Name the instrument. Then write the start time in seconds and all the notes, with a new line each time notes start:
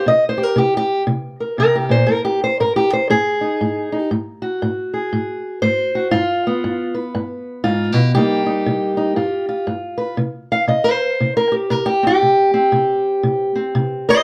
steel-string acoustic guitar
0.06 C3 D#5
0.29 C5
0.38 G4
0.43 A#4
0.56 C3 G4
0.77 G4
1.07 C3
1.40 A#4
1.58 C3 A#4
1.75 G4
1.89 A#2 C5
2.07 G#2 A#4
2.25 G4
2.44 C5
2.60 G#2 A#4
2.76 G4
2.93 C5
3.10 G#2 G#4
3.41 D#4
3.61 G#2
3.92 D#4
4.11 G#2
4.42 F#4
4.62 G#2
4.94 G#4
5.13 G#2
5.62 G#2 C5
5.95 F#4
6.11 G2 F4
6.47 B3
6.64 G2
6.94 B4
7.15 G2
7.64 G#2 F4
7.92 B2 G4
8.14 C3 G3 A#3 D#4 G4
8.46 D#4
8.66 C3
8.97 D#4
9.16 G2 F4
9.49 F4
9.67 G2
9.98 B4
10.17 C3
10.52 F5
10.67 C3 D#5
10.84 C5
11.20 C3
11.37 A#4
11.52 G4
11.70 C3 A#4
11.86 G4
12.03 C4 G4
12.22 C3
12.54 C4
12.72 C3
13.23 C3
13.55 C4
13.75 C3
14.09 C5 D#5